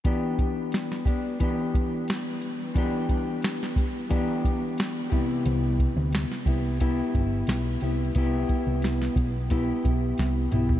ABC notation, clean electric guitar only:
X:1
M:4/4
L:1/8
Q:1/4=89
K:Em
V:1 name="Clean electric guitar"
[E,B,DG]3 [B,DG] [E,B,DG]4 | [E,B,DG]4 [E,B,DG]3 [C,B,EG]- | [C,B,EG]3 [B,EG] [B,EG]3 [B,EG] | [B,EG]4 [B,EG]3 [B,EG] |]